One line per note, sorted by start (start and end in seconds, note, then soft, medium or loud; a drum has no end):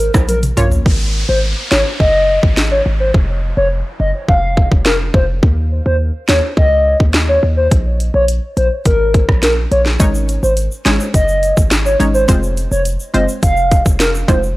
0.00 0.12 A#4 loud
0.00 closed hi-hat medium
0.00 shaker medium
0.14 0.53 A#1 medium
0.14 kick medium
0.14 cross-stick loud
0.14 high timbale medium
0.14 shaker medium
0.29 0.39 A#4 medium
0.29 closed hi-hat medium
0.29 high tom medium
0.29 shaker medium
0.43 closed hi-hat medium
0.43 mid tom medium
0.43 shaker medium
0.57 0.83 A#1 medium
0.57 0.83 A#3 medium
0.57 0.83 C#4 medium
0.57 0.83 F4 medium
0.57 0.68 C#5 medium
0.57 0.84 C#5 medium
0.57 closed hi-hat medium
0.57 mid tom medium
0.57 shaker soft
0.71 floor tom loud
0.71 shaker medium
0.86 1.24 G#1 loud
0.86 kick loud
0.86 downlifter medium
1.28 1.54 G#1 medium
1.28 1.39 C5 medium
1.71 1.84 G#1 medium
1.71 1.82 C#5 medium
1.71 snare loud
2.00 2.38 F#1 medium
2.00 2.40 D#5 loud
2.00 kick medium
2.43 2.81 G#1 medium
2.43 kick medium
2.57 snare loud
2.71 2.82 C#5 medium
2.86 3.11 G#1 medium
3.00 3.11 C5 medium
3.14 3.53 F1 loud
3.14 kick loud
3.57 3.83 F1 loud
3.57 3.68 C#5 medium
4.00 4.13 F#1 loud
4.00 4.10 D#5 medium
4.28 4.67 F1 loud
4.28 4.69 F5 loud
4.28 kick medium
4.57 kick medium
4.72 5.10 F1 medium
4.72 kick medium
4.85 4.96 A#4 medium
4.85 snare loud
5.14 5.40 F1 loud
5.14 5.25 C5 medium
5.14 kick loud
5.43 5.81 D#2 loud
5.43 kick loud
5.86 6.11 D#2 medium
5.86 5.96 C5 medium
6.28 6.41 D#2 loud
6.28 6.39 C#5 medium
6.28 snare loud
6.57 6.95 C#2 loud
6.57 6.98 D#5 loud
6.57 kick medium
7.00 7.38 D#2 medium
7.00 kick medium
7.14 snare loud
7.29 7.39 C#5 medium
7.43 7.68 D#2 medium
7.57 7.68 C5 medium
7.71 8.10 A#1 loud
7.71 kick loud
7.71 closed hi-hat medium
8.00 closed hi-hat medium
8.14 8.40 A#1 medium
8.14 8.25 C#5 medium
8.28 closed hi-hat medium
8.57 8.70 A#1 medium
8.57 8.68 C5 medium
8.57 closed hi-hat soft
8.85 9.24 G#1 medium
8.85 9.26 A#4 loud
8.85 kick medium
8.85 closed hi-hat medium
9.14 kick medium
9.14 closed hi-hat soft
9.29 9.67 A#1 medium
9.29 kick medium
9.29 cross-stick medium
9.42 9.53 A#4 medium
9.42 snare loud
9.42 closed hi-hat medium
9.71 9.97 A#1 medium
9.71 9.82 C#5 medium
9.71 closed hi-hat medium
9.86 snare medium
10.00 10.38 G#1 loud
10.00 10.52 G#3 medium
10.00 10.52 C#4 medium
10.00 10.53 D#4 medium
10.00 10.53 C#5 loud
10.00 kick loud
10.00 closed hi-hat medium
10.00 shaker medium
10.15 shaker medium
10.29 closed hi-hat medium
10.29 shaker medium
10.43 10.68 G#1 medium
10.43 10.53 C5 medium
10.43 shaker medium
10.57 closed hi-hat medium
10.57 shaker medium
10.72 shaker medium
10.85 10.98 G#1 medium
10.85 10.99 G#3 medium
10.85 10.99 C#4 medium
10.85 10.99 D#4 medium
10.85 10.96 C#5 medium
10.85 10.99 C#5 medium
10.85 snare loud
10.85 closed hi-hat medium
11.00 shaker medium
11.14 11.52 F#1 medium
11.14 11.55 D#5 loud
11.14 kick medium
11.14 closed hi-hat medium
11.14 shaker medium
11.28 shaker medium
11.43 closed hi-hat medium
11.43 shaker medium
11.57 11.95 G#1 medium
11.57 kick medium
11.57 shaker medium
11.71 snare loud
11.71 closed hi-hat medium
11.71 shaker medium
11.85 11.96 C#5 medium
11.85 shaker medium
12.00 12.25 G#1 medium
12.00 12.26 G#3 medium
12.00 12.26 C#4 medium
12.00 12.26 D#4 medium
12.00 12.26 C#5 medium
12.00 closed hi-hat medium
12.00 shaker soft
12.14 12.25 C5 medium
12.14 shaker medium
12.28 12.67 F1 loud
12.28 12.81 G#3 loud
12.28 12.81 C4 medium
12.28 12.81 F4 medium
12.28 12.81 C5 loud
12.28 kick loud
12.28 closed hi-hat medium
12.28 shaker medium
12.43 shaker medium
12.57 closed hi-hat medium
12.57 shaker medium
12.71 12.97 F1 loud
12.71 12.82 C#5 medium
12.71 shaker medium
12.85 closed hi-hat medium
12.85 shaker medium
13.00 shaker medium
13.14 13.27 F#1 loud
13.14 13.27 G#3 medium
13.14 13.27 C4 medium
13.14 13.27 F4 medium
13.14 13.27 C5 medium
13.14 13.25 D#5 medium
13.14 closed hi-hat medium
13.29 shaker medium
13.43 13.81 F1 loud
13.43 13.83 F5 loud
13.43 kick medium
13.43 closed hi-hat medium
13.43 shaker medium
13.57 shaker soft
13.71 kick medium
13.71 closed hi-hat soft
13.71 shaker medium
13.86 14.24 F1 medium
13.86 kick medium
13.86 shaker medium
14.00 14.10 A#4 medium
14.00 snare loud
14.00 closed hi-hat medium
14.00 shaker medium
14.15 shaker medium
14.28 14.54 F1 medium
14.28 14.55 G#3 medium
14.28 14.55 C4 medium
14.28 14.55 F4 medium
14.28 14.39 C5 medium
14.28 14.55 C5 medium
14.28 kick loud
14.28 closed hi-hat medium
14.28 high timbale medium
14.28 shaker soft
14.43 shaker medium